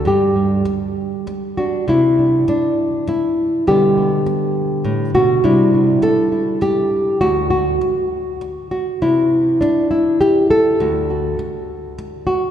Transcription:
Already playing: nylon-string guitar D4
0.05 nylon-string guitar G2 G4
0.36 nylon-string guitar G3
0.65 muted nylon-string guitar stroke
1.27 muted nylon-string guitar stroke
1.57 nylon-string guitar D4 F#4
1.88 nylon-string guitar C3 E4
2.19 nylon-string guitar D4
2.48 nylon-string guitar D4, muted nylon-string guitar stroke
3.07 nylon-string guitar E4, muted nylon-string guitar stroke
3.67 nylon-string guitar B2 D3 G3 B3 G4
3.98 nylon-string guitar B3
4.26 muted nylon-string guitar stroke
4.85 nylon-string guitar A2
5.14 nylon-string guitar B2 F#4
5.44 nylon-string guitar C3 G3 D4 E4
5.74 nylon-string guitar D4
6.02 nylon-string guitar A4, muted nylon-string guitar stroke
6.32 nylon-string guitar E4
6.61 nylon-string guitar G4, muted nylon-string guitar stroke
7.21 nylon-string guitar D2 F#4
7.50 nylon-string guitar F#4
7.81 muted nylon-string guitar stroke
8.41 muted nylon-string guitar stroke
8.71 nylon-string guitar F#4
9.02 nylon-string guitar C3 E4
9.61 nylon-string guitar D4, muted nylon-string guitar stroke
9.91 nylon-string guitar E4
10.21 nylon-string guitar G4, muted nylon-string guitar stroke
10.51 nylon-string guitar A4
10.80 nylon-string guitar D2 F#4
11.10 nylon-string guitar F#4
11.39 muted nylon-string guitar stroke
11.98 muted nylon-string guitar stroke
12.27 nylon-string guitar F#4

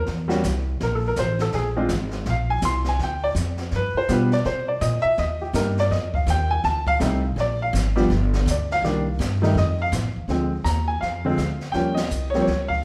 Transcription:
0.06 upright bass E2, brush sweep, snare
0.28 grand piano G3 A#3 C#4 F#4, snare
0.44 upright bass C2, snare, hi-hat pedal
0.80 upright bass A#1, grand piano A#4, brush sweep, snare
0.95 grand piano A4
1.08 grand piano A#4
1.16 upright bass A1, grand piano C5, snare, hi-hat pedal
1.39 grand piano A4, snare
1.52 upright bass A#1, grand piano G#4, brush sweep, snare
1.76 grand piano G#3 C4 D4 F4
1.89 upright bass G#1, snare, hi-hat pedal
2.11 snare
2.25 upright bass A#1, brush sweep, snare
2.30 grand piano F5
2.50 grand piano G#5
2.62 upright bass C2, grand piano C6, snare, hi-hat pedal
2.84 snare
2.89 grand piano G#5
2.99 upright bass D2, brush sweep, snare
3.03 grand piano G5
3.24 grand piano D5
3.35 upright bass F2, snare, hi-hat pedal
3.58 snare
3.71 upright bass G2, brush sweep, snare
3.76 grand piano B4
3.94 grand piano C5, muted upright bass stroke
4.09 upright bass B2, grand piano G3 B3 D4 F4 B4, snare, hi-hat pedal
4.32 grand piano D5, snare
4.45 upright bass C3, grand piano C5, brush sweep, snare
4.68 grand piano D5
4.81 upright bass A#2, grand piano D#5, snare, hi-hat pedal
5.02 grand piano E5, muted upright bass stroke
5.17 upright bass D#2, grand piano D#5, brush sweep, snare
5.42 grand piano G4
5.53 upright bass G2, grand piano G3 A#3 D4 D#4 A#4, snare, hi-hat pedal
5.77 grand piano D5, snare
5.91 upright bass F2, grand piano D#5, brush sweep, snare
6.14 grand piano F5, kick
6.27 upright bass D#2, grand piano G5, snare, hi-hat pedal
6.51 grand piano G#5
6.64 upright bass D2, grand piano A5, brush sweep, snare
6.87 grand piano F5, kick
6.99 upright bass C2, grand piano G3 A3 C4 D#4, snare, hi-hat pedal
7.36 upright bass A#1, brush sweep, snare
7.40 grand piano D5
7.62 grand piano F5
7.73 upright bass G#1, snare, hi-hat pedal
7.96 grand piano F3 G3 B3 D4, snare
8.10 upright bass G1, brush sweep, snare
8.33 snare
8.46 upright bass D2, snare, hi-hat pedal
8.50 grand piano D5
8.71 grand piano F5, snare
8.82 upright bass C2, grand piano D#3 G3 A#3 D4, brush sweep, snare
9.19 upright bass G2, snare, hi-hat pedal
9.42 grand piano D#3 G3 A3 D#4, snare
9.55 upright bass F2, grand piano D#5, brush sweep, snare
9.82 grand piano F5
9.92 upright bass A2, snare, hi-hat pedal
10.03 upright bass F2
10.16 upright bass D#2
10.28 upright bass D2, grand piano D3 F3 G#3 C4, brush sweep, snare
10.64 upright bass D#2, grand piano A#5, snare, hi-hat pedal
10.88 grand piano G#5
11.01 upright bass F2, grand piano F5, brush sweep, snare
11.25 grand piano D3 F3 G#3 C4
11.38 upright bass D2, snare, hi-hat pedal
11.61 snare
11.72 upright bass D#2, grand piano F3 G3 A#3 C#4 G5, brush sweep, snare
11.94 grand piano D#5, snare, ride
12.10 upright bass C2, hi-hat pedal
12.30 grand piano F3 C#5, snare
12.35 grand piano G3 A#3 C4
12.42 grand piano C#5
12.47 upright bass C#2, brush sweep, snare
12.68 grand piano F5, kick

